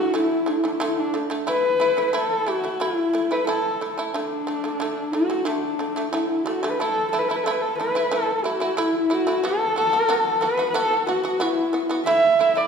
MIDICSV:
0, 0, Header, 1, 3, 480
1, 0, Start_track
1, 0, Tempo, 664452
1, 1071, Time_signature, 4, 2, 24, 8
1, 4907, Tempo, 658617
1, 9194, End_track
2, 0, Start_track
2, 0, Title_t, "Horsehead fiddle"
2, 0, Program_c, 0, 110
2, 0, Note_on_c, 0, 66, 92
2, 118, Note_off_c, 0, 66, 0
2, 129, Note_on_c, 0, 64, 85
2, 356, Note_on_c, 0, 62, 55
2, 367, Note_off_c, 0, 64, 0
2, 415, Note_on_c, 0, 64, 59
2, 426, Note_off_c, 0, 62, 0
2, 474, Note_on_c, 0, 62, 54
2, 485, Note_off_c, 0, 64, 0
2, 523, Note_on_c, 0, 64, 59
2, 534, Note_off_c, 0, 62, 0
2, 588, Note_on_c, 0, 62, 62
2, 598, Note_off_c, 0, 64, 0
2, 635, Note_on_c, 0, 64, 64
2, 646, Note_off_c, 0, 62, 0
2, 713, Note_on_c, 0, 62, 75
2, 724, Note_off_c, 0, 64, 0
2, 836, Note_off_c, 0, 62, 0
2, 1071, Note_on_c, 0, 71, 94
2, 1501, Note_off_c, 0, 71, 0
2, 1501, Note_on_c, 0, 71, 57
2, 1558, Note_on_c, 0, 69, 88
2, 1569, Note_off_c, 0, 71, 0
2, 1806, Note_on_c, 0, 66, 88
2, 1817, Note_off_c, 0, 69, 0
2, 2032, Note_on_c, 0, 64, 96
2, 2043, Note_off_c, 0, 66, 0
2, 2397, Note_on_c, 0, 71, 85
2, 2408, Note_off_c, 0, 64, 0
2, 2505, Note_off_c, 0, 71, 0
2, 2510, Note_on_c, 0, 69, 85
2, 2846, Note_off_c, 0, 69, 0
2, 2992, Note_on_c, 0, 62, 75
2, 3700, Note_on_c, 0, 66, 79
2, 3711, Note_off_c, 0, 62, 0
2, 3939, Note_on_c, 0, 62, 77
2, 3950, Note_off_c, 0, 66, 0
2, 4422, Note_off_c, 0, 62, 0
2, 4426, Note_on_c, 0, 64, 71
2, 4656, Note_on_c, 0, 66, 78
2, 4667, Note_off_c, 0, 64, 0
2, 4842, Note_on_c, 0, 71, 61
2, 4853, Note_off_c, 0, 66, 0
2, 4907, Note_on_c, 0, 69, 91
2, 4917, Note_off_c, 0, 71, 0
2, 5132, Note_off_c, 0, 69, 0
2, 5137, Note_on_c, 0, 69, 77
2, 5195, Note_on_c, 0, 71, 78
2, 5206, Note_off_c, 0, 69, 0
2, 5264, Note_on_c, 0, 69, 77
2, 5275, Note_off_c, 0, 71, 0
2, 5318, Note_on_c, 0, 71, 64
2, 5329, Note_off_c, 0, 69, 0
2, 5376, Note_on_c, 0, 69, 67
2, 5387, Note_off_c, 0, 71, 0
2, 5433, Note_on_c, 0, 71, 65
2, 5444, Note_off_c, 0, 69, 0
2, 5505, Note_on_c, 0, 69, 84
2, 5516, Note_off_c, 0, 71, 0
2, 5624, Note_off_c, 0, 69, 0
2, 5628, Note_on_c, 0, 71, 84
2, 5874, Note_on_c, 0, 69, 90
2, 5885, Note_off_c, 0, 71, 0
2, 6064, Note_off_c, 0, 69, 0
2, 6064, Note_on_c, 0, 69, 55
2, 6107, Note_on_c, 0, 66, 79
2, 6118, Note_off_c, 0, 69, 0
2, 6362, Note_on_c, 0, 64, 82
2, 6373, Note_off_c, 0, 66, 0
2, 6607, Note_on_c, 0, 66, 88
2, 6618, Note_off_c, 0, 64, 0
2, 6848, Note_on_c, 0, 69, 93
2, 6859, Note_off_c, 0, 66, 0
2, 7080, Note_off_c, 0, 69, 0
2, 7086, Note_on_c, 0, 69, 105
2, 7556, Note_on_c, 0, 71, 93
2, 7567, Note_off_c, 0, 69, 0
2, 7740, Note_off_c, 0, 71, 0
2, 7744, Note_on_c, 0, 71, 71
2, 7789, Note_on_c, 0, 69, 98
2, 7800, Note_off_c, 0, 71, 0
2, 8029, Note_off_c, 0, 69, 0
2, 8041, Note_on_c, 0, 66, 81
2, 8278, Note_on_c, 0, 64, 90
2, 8289, Note_off_c, 0, 66, 0
2, 8633, Note_off_c, 0, 64, 0
2, 8742, Note_on_c, 0, 76, 105
2, 9118, Note_on_c, 0, 74, 85
2, 9129, Note_off_c, 0, 76, 0
2, 9194, Note_off_c, 0, 74, 0
2, 9194, End_track
3, 0, Start_track
3, 0, Title_t, "Shamisen"
3, 0, Program_c, 1, 106
3, 0, Note_on_c, 1, 50, 62
3, 0, Note_on_c, 1, 57, 64
3, 80, Note_off_c, 1, 50, 0
3, 84, Note_off_c, 1, 57, 0
3, 99, Note_on_c, 1, 50, 82
3, 107, Note_on_c, 1, 57, 92
3, 296, Note_off_c, 1, 50, 0
3, 300, Note_off_c, 1, 57, 0
3, 334, Note_on_c, 1, 50, 69
3, 343, Note_on_c, 1, 57, 74
3, 438, Note_off_c, 1, 50, 0
3, 442, Note_off_c, 1, 57, 0
3, 460, Note_on_c, 1, 50, 65
3, 469, Note_on_c, 1, 57, 71
3, 561, Note_off_c, 1, 50, 0
3, 565, Note_off_c, 1, 57, 0
3, 578, Note_on_c, 1, 50, 96
3, 588, Note_on_c, 1, 57, 105
3, 776, Note_off_c, 1, 50, 0
3, 781, Note_off_c, 1, 57, 0
3, 822, Note_on_c, 1, 50, 66
3, 830, Note_on_c, 1, 57, 68
3, 922, Note_off_c, 1, 50, 0
3, 926, Note_off_c, 1, 57, 0
3, 938, Note_on_c, 1, 50, 72
3, 946, Note_on_c, 1, 57, 79
3, 1040, Note_off_c, 1, 50, 0
3, 1044, Note_off_c, 1, 57, 0
3, 1061, Note_on_c, 1, 57, 77
3, 1067, Note_on_c, 1, 64, 86
3, 1258, Note_off_c, 1, 57, 0
3, 1261, Note_off_c, 1, 64, 0
3, 1299, Note_on_c, 1, 57, 71
3, 1309, Note_on_c, 1, 64, 75
3, 1401, Note_off_c, 1, 57, 0
3, 1406, Note_off_c, 1, 64, 0
3, 1422, Note_on_c, 1, 57, 61
3, 1429, Note_on_c, 1, 64, 73
3, 1523, Note_off_c, 1, 57, 0
3, 1527, Note_off_c, 1, 64, 0
3, 1539, Note_on_c, 1, 57, 92
3, 1548, Note_on_c, 1, 64, 95
3, 1738, Note_off_c, 1, 57, 0
3, 1743, Note_off_c, 1, 64, 0
3, 1781, Note_on_c, 1, 57, 68
3, 1789, Note_on_c, 1, 64, 76
3, 1883, Note_off_c, 1, 57, 0
3, 1887, Note_off_c, 1, 64, 0
3, 1904, Note_on_c, 1, 57, 57
3, 1910, Note_on_c, 1, 64, 70
3, 2005, Note_off_c, 1, 57, 0
3, 2007, Note_off_c, 1, 64, 0
3, 2022, Note_on_c, 1, 57, 82
3, 2031, Note_on_c, 1, 64, 99
3, 2220, Note_off_c, 1, 57, 0
3, 2224, Note_off_c, 1, 64, 0
3, 2264, Note_on_c, 1, 57, 72
3, 2273, Note_on_c, 1, 64, 75
3, 2365, Note_off_c, 1, 57, 0
3, 2369, Note_off_c, 1, 64, 0
3, 2390, Note_on_c, 1, 57, 67
3, 2395, Note_on_c, 1, 64, 66
3, 2487, Note_off_c, 1, 57, 0
3, 2490, Note_off_c, 1, 64, 0
3, 2508, Note_on_c, 1, 57, 89
3, 2518, Note_on_c, 1, 64, 100
3, 2703, Note_off_c, 1, 57, 0
3, 2708, Note_off_c, 1, 64, 0
3, 2755, Note_on_c, 1, 57, 63
3, 2761, Note_on_c, 1, 64, 69
3, 2850, Note_off_c, 1, 57, 0
3, 2853, Note_off_c, 1, 64, 0
3, 2872, Note_on_c, 1, 57, 71
3, 2881, Note_on_c, 1, 64, 81
3, 2969, Note_off_c, 1, 57, 0
3, 2973, Note_off_c, 1, 64, 0
3, 2993, Note_on_c, 1, 50, 83
3, 3001, Note_on_c, 1, 57, 91
3, 3185, Note_off_c, 1, 50, 0
3, 3189, Note_off_c, 1, 57, 0
3, 3229, Note_on_c, 1, 50, 65
3, 3238, Note_on_c, 1, 57, 75
3, 3327, Note_off_c, 1, 50, 0
3, 3332, Note_off_c, 1, 57, 0
3, 3351, Note_on_c, 1, 50, 62
3, 3359, Note_on_c, 1, 57, 65
3, 3448, Note_off_c, 1, 50, 0
3, 3452, Note_off_c, 1, 57, 0
3, 3467, Note_on_c, 1, 50, 83
3, 3478, Note_on_c, 1, 57, 88
3, 3662, Note_off_c, 1, 50, 0
3, 3667, Note_off_c, 1, 57, 0
3, 3708, Note_on_c, 1, 50, 62
3, 3716, Note_on_c, 1, 57, 66
3, 3806, Note_off_c, 1, 50, 0
3, 3810, Note_off_c, 1, 57, 0
3, 3826, Note_on_c, 1, 50, 62
3, 3833, Note_on_c, 1, 57, 64
3, 3925, Note_off_c, 1, 50, 0
3, 3929, Note_off_c, 1, 57, 0
3, 3938, Note_on_c, 1, 50, 84
3, 3947, Note_on_c, 1, 57, 84
3, 4137, Note_off_c, 1, 50, 0
3, 4141, Note_off_c, 1, 57, 0
3, 4184, Note_on_c, 1, 50, 61
3, 4192, Note_on_c, 1, 57, 71
3, 4284, Note_off_c, 1, 50, 0
3, 4288, Note_off_c, 1, 57, 0
3, 4306, Note_on_c, 1, 50, 61
3, 4313, Note_on_c, 1, 57, 72
3, 4404, Note_off_c, 1, 50, 0
3, 4408, Note_off_c, 1, 57, 0
3, 4426, Note_on_c, 1, 50, 87
3, 4434, Note_on_c, 1, 57, 97
3, 4620, Note_off_c, 1, 50, 0
3, 4624, Note_off_c, 1, 57, 0
3, 4664, Note_on_c, 1, 50, 70
3, 4674, Note_on_c, 1, 57, 84
3, 4763, Note_off_c, 1, 50, 0
3, 4767, Note_off_c, 1, 57, 0
3, 4788, Note_on_c, 1, 50, 77
3, 4798, Note_on_c, 1, 57, 93
3, 4884, Note_off_c, 1, 50, 0
3, 4889, Note_off_c, 1, 57, 0
3, 4912, Note_on_c, 1, 57, 76
3, 4922, Note_on_c, 1, 64, 89
3, 5103, Note_off_c, 1, 57, 0
3, 5108, Note_off_c, 1, 64, 0
3, 5153, Note_on_c, 1, 57, 78
3, 5159, Note_on_c, 1, 64, 75
3, 5248, Note_off_c, 1, 57, 0
3, 5251, Note_off_c, 1, 64, 0
3, 5275, Note_on_c, 1, 57, 65
3, 5283, Note_on_c, 1, 64, 66
3, 5369, Note_off_c, 1, 57, 0
3, 5373, Note_off_c, 1, 64, 0
3, 5394, Note_on_c, 1, 57, 92
3, 5403, Note_on_c, 1, 64, 98
3, 5585, Note_off_c, 1, 57, 0
3, 5589, Note_off_c, 1, 64, 0
3, 5638, Note_on_c, 1, 57, 67
3, 5645, Note_on_c, 1, 64, 74
3, 5731, Note_off_c, 1, 57, 0
3, 5734, Note_off_c, 1, 64, 0
3, 5752, Note_on_c, 1, 57, 69
3, 5759, Note_on_c, 1, 64, 72
3, 5848, Note_off_c, 1, 57, 0
3, 5851, Note_off_c, 1, 64, 0
3, 5870, Note_on_c, 1, 57, 95
3, 5878, Note_on_c, 1, 64, 93
3, 6063, Note_off_c, 1, 57, 0
3, 6067, Note_off_c, 1, 64, 0
3, 6109, Note_on_c, 1, 57, 68
3, 6118, Note_on_c, 1, 64, 77
3, 6206, Note_off_c, 1, 57, 0
3, 6211, Note_off_c, 1, 64, 0
3, 6226, Note_on_c, 1, 57, 71
3, 6234, Note_on_c, 1, 64, 76
3, 6325, Note_off_c, 1, 57, 0
3, 6329, Note_off_c, 1, 64, 0
3, 6349, Note_on_c, 1, 57, 89
3, 6357, Note_on_c, 1, 64, 106
3, 6542, Note_off_c, 1, 57, 0
3, 6547, Note_off_c, 1, 64, 0
3, 6588, Note_on_c, 1, 57, 72
3, 6595, Note_on_c, 1, 64, 74
3, 6686, Note_off_c, 1, 57, 0
3, 6689, Note_off_c, 1, 64, 0
3, 6711, Note_on_c, 1, 57, 80
3, 6720, Note_on_c, 1, 64, 79
3, 6807, Note_off_c, 1, 57, 0
3, 6812, Note_off_c, 1, 64, 0
3, 6833, Note_on_c, 1, 59, 81
3, 6842, Note_on_c, 1, 66, 90
3, 7025, Note_off_c, 1, 59, 0
3, 7029, Note_off_c, 1, 66, 0
3, 7071, Note_on_c, 1, 59, 72
3, 7080, Note_on_c, 1, 66, 80
3, 7167, Note_off_c, 1, 59, 0
3, 7172, Note_off_c, 1, 66, 0
3, 7185, Note_on_c, 1, 59, 64
3, 7194, Note_on_c, 1, 66, 72
3, 7284, Note_off_c, 1, 59, 0
3, 7289, Note_off_c, 1, 66, 0
3, 7307, Note_on_c, 1, 59, 94
3, 7315, Note_on_c, 1, 66, 105
3, 7501, Note_off_c, 1, 59, 0
3, 7505, Note_off_c, 1, 66, 0
3, 7543, Note_on_c, 1, 59, 69
3, 7552, Note_on_c, 1, 66, 76
3, 7643, Note_off_c, 1, 59, 0
3, 7647, Note_off_c, 1, 66, 0
3, 7663, Note_on_c, 1, 59, 67
3, 7674, Note_on_c, 1, 66, 73
3, 7763, Note_off_c, 1, 59, 0
3, 7769, Note_off_c, 1, 66, 0
3, 7787, Note_on_c, 1, 59, 94
3, 7793, Note_on_c, 1, 66, 104
3, 7980, Note_off_c, 1, 59, 0
3, 7984, Note_off_c, 1, 66, 0
3, 8025, Note_on_c, 1, 59, 71
3, 8035, Note_on_c, 1, 66, 88
3, 8124, Note_off_c, 1, 59, 0
3, 8129, Note_off_c, 1, 66, 0
3, 8145, Note_on_c, 1, 59, 64
3, 8153, Note_on_c, 1, 66, 79
3, 8243, Note_off_c, 1, 59, 0
3, 8247, Note_off_c, 1, 66, 0
3, 8264, Note_on_c, 1, 59, 95
3, 8272, Note_on_c, 1, 66, 108
3, 8459, Note_off_c, 1, 59, 0
3, 8463, Note_off_c, 1, 66, 0
3, 8505, Note_on_c, 1, 59, 69
3, 8513, Note_on_c, 1, 66, 77
3, 8603, Note_off_c, 1, 59, 0
3, 8607, Note_off_c, 1, 66, 0
3, 8625, Note_on_c, 1, 59, 75
3, 8634, Note_on_c, 1, 66, 91
3, 8723, Note_off_c, 1, 59, 0
3, 8727, Note_off_c, 1, 66, 0
3, 8747, Note_on_c, 1, 57, 84
3, 8754, Note_on_c, 1, 64, 103
3, 8939, Note_off_c, 1, 57, 0
3, 8943, Note_off_c, 1, 64, 0
3, 8988, Note_on_c, 1, 57, 71
3, 8997, Note_on_c, 1, 64, 84
3, 9083, Note_off_c, 1, 57, 0
3, 9088, Note_off_c, 1, 64, 0
3, 9106, Note_on_c, 1, 57, 68
3, 9116, Note_on_c, 1, 64, 73
3, 9194, Note_off_c, 1, 57, 0
3, 9194, Note_off_c, 1, 64, 0
3, 9194, End_track
0, 0, End_of_file